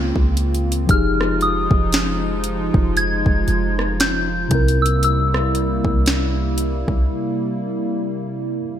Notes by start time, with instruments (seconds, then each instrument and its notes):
Already playing: 808-style bass C#2, tine electric piano C#3 G#3 C4 F4, analog synth pad C#3 A#3 C4 F4, downlifter
0.16 808-style bass C#2, kick
0.37 closed hi-hat, open hi-hat
0.54 closed hi-hat
0.72 closed hi-hat
0.86 808-style bass F1, tine electric piano F3 D#4, analog synth pad F3 G#3 D#4 F4, kick, closed hi-hat
0.91 tine electric piano G4 G#4, synth bell F6
1.21 cross-stick
1.41 synth bell D#6, closed hi-hat
1.71 808-style bass F1, kick
1.93 snare, closed hi-hat
2.44 closed hi-hat
2.74 808-style bass F1, kick
2.97 synth bell G#6, closed hi-hat
3.26 808-style bass F1, kick
3.48 808-style bass F1, closed hi-hat
3.79 cross-stick
4.00 synth bell G6, snare, closed hi-hat
4.48 808-style bass C2, tine electric piano C3 C4, analog synth pad C3 G3 A#3 E4, kick, closed hi-hat, open hi-hat
4.52 tine electric piano E4 A#4
4.68 closed hi-hat
4.82 synth bell E6, closed hi-hat
5.03 synth bell E6, closed hi-hat
5.34 cross-stick
5.55 closed hi-hat
5.85 808-style bass C2, kick
6.06 snare, closed hi-hat
6.58 closed hi-hat
6.88 808-style bass C2, kick